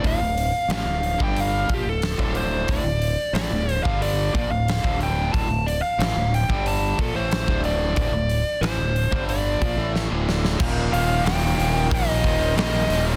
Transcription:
<<
  \new Staff \with { instrumentName = "Lead electric guitar" } { \time 4/4 \key d \phrygian \tempo 4 = 91 f''4 f''8. g''16 f''8 g'16 a'8. c''8 | d''4 d''8. f''16 d''8 d''16 f''8. g''8 | a''8 d''16 f''8. g''8 a''8 a'16 c''8. d''8 | d''4 c''4 d''4 r4 |
r8 f''8 g''4 ees''4 ees''8. r16 | }
  \new Staff \with { instrumentName = "Distorted electric guitar" } { \clef bass \time 4/4 \key d \phrygian r1 | r1 | r1 | r1 |
<ees, bes, ees g g'>2~ <ees, bes, ees g g'>8 <ees, bes, ees g g'>8 <ees, bes, ees g g'>4 | }
  \new Staff \with { instrumentName = "Distorted electric guitar" } { \clef bass \time 4/4 \key d \phrygian <d, a,>16 <d, a,>8 r16 <a, e>16 <d, a,>8 <g, d g>8. <bes, f>16 <d, a,>8 <d, a, d>8. | <d, a,>16 <d, a,>8 r16 <a, e>16 <d, a,>8 <g, d g>8. <bes, f>16 <d, a,>8 <d, a, d>8. | <d, a,>16 <d, a,>8 r16 <a, e>16 <d, a,>8 <g, d g>8. <bes, f>16 <a, e a>8 <d, a, d>8. | <d, a,>16 <d, a,>8 r16 <a, e>16 <d, a,>8 <g, d g>8. <bes, f>16 <a, e a>8 <d, a, d>8. |
<ees, bes, ees>8 <ees, bes, ees>8 <ees, bes, ees>8 <ees, bes, ees>8 <ees, bes, ees>8 <ees, bes, ees>8 <ees, bes, ees>8 <ees, bes, ees>8 | }
  \new Staff \with { instrumentName = "Overdriven electric guitar" } { \clef bass \time 4/4 \key d \phrygian <d, a,>16 <d, a,>8 r16 <a, e>16 <d, a,>8 <g, d g>8. <bes, f>16 <d, a,>8 <d, a, d>8. | <d, a,>16 <d, a,>8 r16 <a, e>16 <d, a,>8 <g, d g>8. <bes, f>16 <d, a,>8 <d, a, d>8. | <d, a,>16 <d, a,>8 r16 <a, e>16 <d, a,>8 <g, d g>8. <bes, f>16 <a, e a>8 <d, a, d>8. | <d, a,>16 <d, a,>8 r16 <a, e>16 <d, a,>8 <g, d g>8. <bes, f>16 <a, e a>8 <d, a, d>8. |
<ees, bes, ees>8 <ees, bes, ees>8 <ees, bes, ees>8 <ees, bes, ees>8 <ees, bes, ees>8 <ees, bes, ees>8 <ees, bes, ees>8 <ees, bes, ees>8 | }
  \new Staff \with { instrumentName = "Fingered electric bass" } { \clef bass \time 4/4 \key d \phrygian d,,16 d,,8 r16 a,,16 d,,8 g,,8. bes,,16 d,,8 d,,8. | d,,16 d,,8 r16 a,,16 d,,8 g,,8. bes,,16 d,,8 d,,8. | d,,16 d,,8 r16 a,,16 d,,8 g,,8. bes,,16 a,,8 d,,8. | d,,16 d,,8 r16 a,,16 d,,8 g,,8. bes,,16 a,,8 d,,8. |
ees,,8 ees,,8 ees,,8 ees,,8 bes,,8 ees,,8 bes,,8 ees,,8 | }
  \new DrumStaff \with { instrumentName = "Drums" } \drummode { \time 4/4 <hho bd>8 hho8 <hho sn>8 hho16 bd16 hho8 <hho bd>8 <hho sn>16 bd16 hho8 | <hho bd>8 hho8 <hho sn>8 hho16 bd16 hho8 <hho bd>8 <hho sn>16 bd16 hho8 | <hho bd>8 hho8 <hho sn>8 hho16 bd16 hho8 <hho bd>8 <hho sn>16 bd16 hho8 | <hho bd>8 hho8 <hho sn>8 hho16 bd16 hho8 <hho bd>8 sn8 sn16 sn16 |
<cymc bd>8 hho8 <hho sn>8 hho8 <hho bd>8 <hho bd>8 <hho sn>8 <hho sn>8 | }
>>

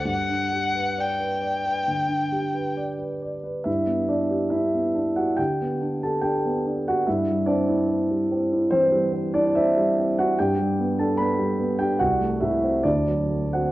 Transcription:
<<
  \new Staff \with { instrumentName = "Violin" } { \time 4/4 \key g \major \tempo 4 = 71 fis''4 g''2 r4 | r1 | r1 | r1 | }
  \new Staff \with { instrumentName = "Grand piano" } { \time 4/4 \key g \major << { r1 | <e' e''>8 <d' d''>8 <e' e''>8. <fis' fis''>16 <g' g''>8. <a' a''>16 <g' g''>8. <fis' fis''>16 | <e' e''>8 <d' d''>4. <c' c''>8. <d' d''>16 <e' e''>8. <fis' fis''>16 | <g' g''>8. <a' a''>16 <b' b''>8. <g' g''>16 <fis' fis''>8 <e' e''>8 <d' d''>8. <fis' fis''>16 | } \\ { g,16 d'16 g'16 b'16 d''16 b'16 d''16 b'16 d16 d'16 g'16 b'16 d''16 b'16 d''16 b'16 | g,16 b8 g'16 d'16 b16 d'16 g'16 d16 b16 d'16 g'16 d'16 b16 d'16 g'16 | g,16 g16 c'16 e'16 c'16 g16 c'16 e'16 e16 g16 c'16 e'16 c'16 g16 c'16 e'16 | g,16 g16 b16 d'16 b16 g16 b16 d'16 c,16 a16 c16 c'16 d,16 fis16 a16 c'16 | } >> }
>>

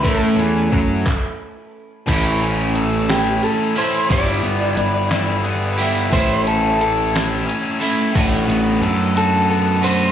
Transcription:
<<
  \new Staff \with { instrumentName = "Clean electric guitar" } { \time 6/8 \key a \mixolydian \tempo 4. = 59 a'2 r4 | r4. g'8 a'8 c''8 | d''2. | c''8 a'8 a'8 r4. |
r4. a'8 a'8 c''8 | }
  \new Staff \with { instrumentName = "Clean electric guitar" } { \time 6/8 \key a \mixolydian <a, e a cis' e'>4. r4. | <a, e a cis' e'>2~ <a, e a cis' e'>8 <a, e a cis' e'>8 | <g b e' g'>2~ <g b e' g'>8 <g b e' g'>8 | <a cis' e' a'>2~ <a cis' e' a'>8 <a cis' e' a'>8 |
<a d' fis' b'>2~ <a d' fis' b'>8 <a d' fis' b'>8 | }
  \new Staff \with { instrumentName = "Overdriven electric guitar" } { \time 6/8 \key a \mixolydian a8 e8 fis8 r4. | a,8 cis'8 a'8 e'8 cis'8 e'8 | g8 b8 b'8 e'8 b8 e'8 | a,8 cis'8 a'8 e'8 cis'8 e'8 |
a,8 b8 a'8 fis'8 b8 fis'8 | }
  \new Staff \with { instrumentName = "Picked electric bass" } { \clef bass \time 6/8 \key a \mixolydian a,8 e,8 fis,8 r4. | a,,2 r4 | g,,8 g,,8 g,,2 | a,,2 r4 |
a,,8 a,,8 fis,2 | }
  \new DrumStaff \with { instrumentName = "Drums" } \drummode { \time 6/8 <hh bd>8 hh8 <hh bd>8 <hc bd>4. | <cymc hh bd>8 hh8 hh8 <hh sn>8 hh8 hh8 | <hh bd>8 hh8 hh8 <hh sn>8 hh8 hh8 | <hh bd>8 hh8 hh8 <hh sn>8 hh8 hh8 |
<hh bd>8 hh8 hh8 hh8 hh8 hh8 | }
>>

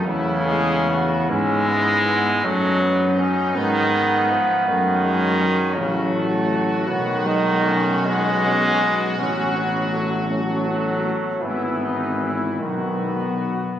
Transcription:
<<
  \new Staff \with { instrumentName = "Trumpet section" } { \time 6/8 \key e \major \tempo 4. = 53 e'8 gis'8 fis'8 e'4. | dis'2. | cis'4. fis'4.~ | fis'2.~ |
fis'2. | e'8 dis'8 e'8 fis'4. | }
  \new Staff \with { instrumentName = "Euphonium" } { \time 6/8 \key e \major a4. b4. | cis'4. b4 r8 | a8 gis8 fis2 | fis8 gis8 a8 b4. |
cis'8 b8 a8 cis'8 b8 a8 | b4 r8 b4. | }
  \new Staff \with { instrumentName = "Flugelhorn" } { \time 6/8 \key e \major b8 gis8 b8 cis'8 b8 b8 | a8 b8 cis'8 b4.~ | b4 r8 a4. | b8 dis'8 cis'8 b8 cis'8 b8 |
cis'8 b8 a8 a4. | b4 r8 b4. | }
  \new Staff \with { instrumentName = "Trombone" } { \clef bass \time 6/8 \key e \major cis4. gis4. | fis4 r8 dis4 eis8 | dis4. cis8 r4 | dis4. gis4. |
fis4. fis4. | e4. dis4 r8 | }
  \new Staff \with { instrumentName = "Tuba" } { \clef bass \time 6/8 \key e \major e,4. gis,4. | fis,4. gis,4 r8 | fis,4. a,,4. | b,,2. |
a,,2~ a,,8 r8 | gis,,4. b,,4. | }
>>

